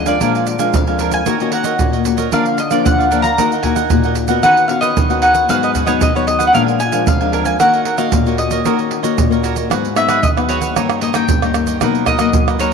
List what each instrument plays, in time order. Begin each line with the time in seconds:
Already playing: nylon-string guitar F2
0.06 nylon-string guitar F3 G#3 D4, cavaquinho A#4 F5 G#5, mandolin D5, pandeiro, shaker
0.20 nylon-string guitar A#2 F3 G#3 D4, cavaquinho D4 A#4 F5 G#5, pandeiro, shaker, surdo
0.35 cavaquinho A#4 F5 G#5, pandeiro, shaker
0.47 muted cavaquinho stroke, pandeiro, shaker
0.59 nylon-string guitar F3 G#3 D4, cavaquinho A#4 F5 G#5, pandeiro, shaker
0.73 nylon-string guitar F2, mandolin F5, pandeiro, shaker, surdo
0.87 nylon-string guitar F3 G#3 D4, cavaquinho A#4 F5 G#5, pandeiro, shaker
0.99 cavaquinho D4 A#4 F5 G#5, pandeiro, shaker
1.12 cavaquinho A#4 F5 G#5, mandolin G#5, pandeiro, shaker
1.26 nylon-string guitar D#3 A#3 C#4 F#4, cavaquinho F#4 A#4 C#5 D#5, pandeiro, shaker, surdo
1.40 nylon-string guitar A#3 C#4 F#4, cavaquinho A#4 C#5 D#5, pandeiro, shaker
1.52 cavaquinho F#4 A#4 C#5 D#5, mandolin F#5, pandeiro
1.64 cavaquinho A#4 C#5 D#5, pandeiro, shaker
1.79 nylon-string guitar A#2 A#3 C#4 F#4, pandeiro, shaker, surdo
1.93 cavaquinho A#4 C#5 D#5, pandeiro, shaker
2.05 nylon-string guitar A#3 C#4 F#4, muted cavaquinho stroke, pandeiro, shaker
2.17 cavaquinho A#4 C#5 D#5, pandeiro, shaker
2.32 nylon-string guitar D3 F3 A#3 D4, cavaquinho D4 A#4 D5 F5, mandolin F5, pandeiro, shaker, surdo
2.45 cavaquinho D5 F5, pandeiro, shaker
2.58 mandolin D#5, muted cavaquinho stroke, pandeiro, shaker
2.70 nylon-string guitar F3 A#3 D4, cavaquinho A#4 D5 F5, mandolin D5, pandeiro, shaker
2.85 nylon-string guitar D3, mandolin F#5, pandeiro, shaker, surdo
2.98 cavaquinho A#4 D5 F5, pandeiro, shaker
3.11 nylon-string guitar F3 A#3 D4, cavaquinho D4 A#4 D5 F5, pandeiro, shaker
3.22 cavaquinho A#4 D5 F5, mandolin A#5, pandeiro, shaker
3.38 nylon-string guitar D#3 A#3 D#4 F#4, cavaquinho F#4 A#4 D#5 F#5, pandeiro, shaker, surdo
3.52 cavaquinho A#4 D#5 F#5, pandeiro, shaker
3.63 nylon-string guitar A#3 D#4 F#4, cavaquinho F#4 A#4 D#5 F#5, mandolin G#5, pandeiro, surdo
3.76 cavaquinho A#4 D#5 F#5, pandeiro, shaker
3.90 nylon-string guitar A#2 A#3 D#4 F#4, pandeiro, shaker, surdo
4.03 cavaquinho A#4 D#5 F#5, pandeiro, shaker
4.15 muted cavaquinho stroke, pandeiro, shaker
4.28 nylon-string guitar B3 C#4 F#4, cavaquinho A#4 D#5 F#5, pandeiro, shaker
4.43 nylon-string guitar D#3, cavaquinho D#4 B4 C#5 F#5, mandolin F#5, pandeiro, shaker, surdo
4.57 cavaquinho B4 C#5 F#5, pandeiro, shaker
4.68 nylon-string guitar B3 C#4 F#4, mandolin F5, muted cavaquinho stroke, pandeiro
4.81 cavaquinho B4 C#5 F#5, mandolin D#5, pandeiro, shaker
4.97 nylon-string guitar D#3, pandeiro, shaker, surdo
5.09 nylon-string guitar B3 C#4 F#4, cavaquinho B4 C#5 F#5, pandeiro, shaker
5.22 cavaquinho D#4 B4 C#5 F#5, mandolin F#5, pandeiro
5.34 cavaquinho B4 C#5 F#5, pandeiro, shaker
5.49 nylon-string guitar G#2 F#3 B3 D#4, cavaquinho F#4 G#4 B4 F#5, mandolin F5, pandeiro, shaker, surdo
5.62 cavaquinho G#4 B4 F#5, mandolin D#5, pandeiro, shaker
5.75 cavaquinho F#4 G#4 B4 F#5, pandeiro, shaker, surdo
5.86 nylon-string guitar F#3 B3 D#4, cavaquinho G#4 B4 F#5, mandolin C#5 D#5, pandeiro, shaker
6.01 nylon-string guitar D#3, mandolin D#5, pandeiro, shaker, surdo
6.15 nylon-string guitar F#3 B3 D#4, cavaquinho G#4 B4 F#5, mandolin C#5, pandeiro, shaker
6.27 mandolin D#5, muted cavaquinho stroke, pandeiro
6.39 cavaquinho G#4 B4 F#5, pandeiro, shaker
6.47 mandolin F#5
6.53 nylon-string guitar A#2 F3 G#3 D4, cavaquinho D4 A#4 F5 G#5, mandolin F5, pandeiro, shaker, surdo
6.66 cavaquinho A#4 F5 G#5, pandeiro, shaker
6.80 mandolin G#5, muted cavaquinho stroke, pandeiro, shaker
6.92 nylon-string guitar F3 G#3 D4, cavaquinho A#4 F5 G#5, pandeiro, shaker
7.07 nylon-string guitar F2, mandolin F5, pandeiro, shaker, surdo
7.20 nylon-string guitar F3 G#3 D4, cavaquinho A#4 F5 G#5, pandeiro, shaker
7.32 cavaquinho D4 A#4 F5 G#5, pandeiro
7.45 cavaquinho A#4 F5 G#5, mandolin G#5, pandeiro, shaker
7.60 nylon-string guitar D#3 A#3 C#4 F#4, cavaquinho F#4 A#4 C#5 D#5, mandolin F#5, pandeiro, shaker, surdo
7.73 cavaquinho A#4 C#5 D#5, pandeiro, shaker
7.85 cavaquinho F#4 A#4 C#5 D#5, pandeiro
7.98 nylon-string guitar A#3 C#4 F#4, cavaquinho A#4 C#5 D#5, mandolin F5, pandeiro, shaker
8.12 nylon-string guitar A#2, pandeiro, shaker, surdo
8.26 nylon-string guitar A#3 C#4 F#4, cavaquinho A#4 C#5 D#5, pandeiro, shaker
8.38 mandolin D#5, muted cavaquinho stroke, pandeiro
8.51 cavaquinho A#4 C#5 D#5, pandeiro, shaker
8.65 nylon-string guitar D#3 A#3 C#4 F#4, cavaquinho F#4 A#4 C#5 D#5, pandeiro, shaker, surdo
8.79 cavaquinho A#4 C#5 D#5, pandeiro, shaker
8.91 muted cavaquinho stroke, pandeiro
9.03 nylon-string guitar A#3 C#4 F#4, cavaquinho A#4 C#5 D#5, pandeiro, shaker
9.17 nylon-string guitar A#2, pandeiro, shaker, surdo
9.30 nylon-string guitar A#3 C#4 F#4, cavaquinho A#4 C#5 D#5, pandeiro, shaker
9.43 cavaquinho F#4 A#4 C#5 D#5, pandeiro, shaker
9.56 cavaquinho A#4 C#5 D#5, pandeiro, shaker
9.70 nylon-string guitar G#2 F#3 B3 D#4, cavaquinho F#4 G#4 B4 F#5, pandeiro, tamborim, shaker, surdo
9.85 pandeiro, shaker
9.95 nylon-string guitar F#3 B3 D#4, cavaquinho F#4 G#4 B4 F#5, mandolin E5, pandeiro, tamborim, shaker
10.09 cavaquinho F#4 G#4 B4 F#5, pandeiro, tamborim, shaker
10.23 nylon-string guitar D#3, mandolin D#5, pandeiro, shaker, surdo
10.36 nylon-string guitar F#3 B3 D#4, cavaquinho G#4 B4 F#5, pandeiro, tamborim, shaker
10.49 cavaquinho F#4 G#4 B4 F#5, mandolin C#5, pandeiro
10.61 cavaquinho G#4 B4 F#5, pandeiro, shaker
10.75 nylon-string guitar G2 D#3 A#3 C#4, cavaquinho D#4 G4 C#5 D#5, pandeiro, tamborim, shaker, surdo
10.90 pandeiro, tamborim, shaker
11.01 nylon-string guitar D#3 A#3 C#4, cavaquinho D#4 G4 C#5 D#5, mandolin D#5, pandeiro
11.14 nylon-string guitar D#3 A#3 C#4, cavaquinho D#4 G4 C#5 D#5, mandolin G5, pandeiro, tamborim, shaker
11.29 nylon-string guitar G2, pandeiro, shaker, surdo
11.42 nylon-string guitar D#3 A#3 C#4, cavaquinho G4 C#5 D#5, pandeiro, tamborim, shaker
11.54 nylon-string guitar D#3 A#3 C#4, pandeiro, tamborim, shaker
11.67 cavaquinho G4 C#5 D#5, pandeiro, shaker
11.81 nylon-string guitar B2 F#3 A#3 D#4, cavaquinho D#4 A#4 B4 D#5, pandeiro, tamborim, shaker, surdo
11.95 pandeiro, shaker
12.06 cavaquinho D#4 A#4 B4 D#5, mandolin D#5, pandeiro, tamborim, shaker, surdo
12.19 nylon-string guitar F#3 A#3 D#4, cavaquinho D#4 A#4 B4 D#5, pandeiro, tamborim, shaker
12.33 nylon-string guitar F#2, pandeiro, shaker, surdo
12.48 cavaquinho A#4 B4 D#5, pandeiro, tamborim, shaker
12.59 nylon-string guitar F#3 A#3 D#4, cavaquinho D#4 A#4 B4 D#5, mandolin C#5, pandeiro, shaker